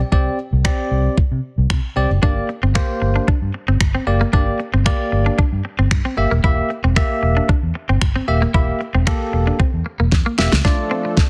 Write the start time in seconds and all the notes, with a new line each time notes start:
0.12 C2 C4 G4 D5, kick
0.53 C2
0.65 C4 G4 D5, finger snap, kick
0.91 C2
1.18 muted fingered electric bass stroke, kick
1.31 C3
1.58 C2
1.70 C3, finger snap, kick
1.96 C2 C4 G4 D5
2.10 F#1
2.22 A#3 D4 G4 D5, kick
2.49 muted clean electric guitar stroke
2.63 G1 C4
2.75 A#3 G4 C5, finger snap, kick
3.02 G1, muted clean electric guitar stroke
3.16 D4
3.28 D4, muted fingered electric bass stroke, kick
3.42 G2
3.54 muted clean electric guitar stroke
3.68 G1 C4
3.81 G1, finger snap, kick
3.95 C4
4.07 F#1 A#3 G4 D5, muted clean electric guitar stroke
4.21 A#3
4.33 G1 A#3 D4 G4 D5, kick
4.60 muted clean electric guitar stroke
4.74 G1 C4
4.86 A#3 G4 D5, finger snap, kick
5.12 G1, muted clean electric guitar stroke
5.26 D4
5.38 D4, muted fingered electric bass stroke, kick
5.53 G2
5.65 muted clean electric guitar stroke
5.79 G1 C4
5.91 G2, finger snap, kick
6.05 C4
6.17 G1 A#3 G4 E5, muted clean electric guitar stroke
6.31 D#1 A#3
6.44 E1 A#3 E4 G4 E5, kick
6.70 muted clean electric guitar stroke
6.84 E1 C4
6.96 A#3 G4 E5, finger snap, kick
7.23 E1, muted clean electric guitar stroke
7.37 D4
7.49 D4, muted fingered electric bass stroke, kick
7.63 E2
7.75 muted clean electric guitar stroke
7.89 G1 C4
8.02 finger snap, kick
8.16 C4
8.28 D#1 A#3 G4 E5, muted clean electric guitar stroke
8.42 A#3
8.54 E1 A#3 E4 G4 E5, kick
8.81 muted clean electric guitar stroke
8.95 E1 C4
9.07 A#3 G4 A4, finger snap, kick
9.33 E1, muted clean electric guitar stroke
9.47 D4
9.60 C4, muted fingered electric bass stroke, kick
9.74 E2
9.86 muted clean electric guitar stroke
10.00 E1 A#3
10.12 E2, kick, snare
10.26 A#3
10.38 E1 A#3 G4 E5, muted clean electric guitar stroke, snare
10.52 C#2 A3, snare
10.65 F3 A3 D4 F4 A4 D5, kick, snare, riser
10.91 C4
11.05 muted clean electric guitar stroke
11.17 kick, snare